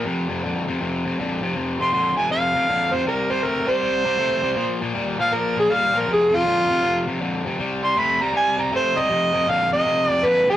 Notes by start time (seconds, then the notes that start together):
0.05 F2 C3
0.29 F2 C3
0.43 F2 D3
0.68 F2 C3
0.81 F2 C3
1.05 F2 C3
1.19 F2 D3
1.42 F2 C3
1.56 F2 C3
1.80 F2 C3 C6
1.92 F2 D3 C6
2.16 F2 C3 G#5
2.30 F2 C3 F5
2.55 F2 C3
2.68 F2 D3
2.92 F2 C3 C5
3.06 C3 G3 A#4
3.30 C3 G3 C5
3.43 C3 A3 A#4
3.67 C3 G3 C5
3.82 C3 G3
4.05 C3 G3
4.18 C3 A3
4.43 C3 G3
4.56 A#2 F3
4.81 A#2 F3
4.95 A#2 G3
5.19 A#2 F3 F5
5.32 A#2 F3 A#4
5.56 A#2 F3 G#4
5.70 A#2 G3 F5
5.94 A#2 F3
5.99 A#4
6.07 F2 C3
6.13 G#4
6.31 F2 C3
6.36 F4
6.44 F2 D3
6.70 F2 C3
6.82 F2 C3
7.07 F2 C3
7.21 F2 D3
7.45 F2 C3
7.59 C3 G3
7.83 C3 G3 C6
7.97 C3 A3 B5
8.21 C3 G3 A#5
8.34 C3 G3 G#5
8.58 C3 G3 A#5
8.72 C3 A3 C5
8.97 C3 G3 D#5
9.10 F2 C3
9.33 F2 C3
9.47 F2 D3 F5
9.73 F2 C3 D#5
9.85 F2 C3
10.07 F2 C3 D5
10.22 F2 D3
10.27 B4
10.48 F2 C3 A4